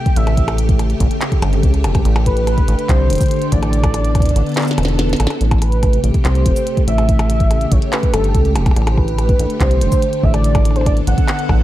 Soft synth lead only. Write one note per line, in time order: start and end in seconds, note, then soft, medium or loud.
0.00 0.18 G5 loud
0.16 0.58 E5 loud
2.26 2.91 B4 loud
2.89 3.54 C5 loud
3.52 4.99 D5 loud
5.62 6.01 B4 loud
6.25 6.84 C5 loud
6.88 7.73 E5 loud
7.72 7.92 C#5 loud
7.93 8.12 B4 loud
8.14 8.53 A4 medium
8.91 8.99 C5 medium
8.98 9.60 B4 loud
9.61 10.25 C5 loud
10.24 10.33 E5 loud
10.34 10.77 D5 loud
10.76 10.86 C5 medium
10.87 10.96 D5 loud
11.07 11.63 F#5 loud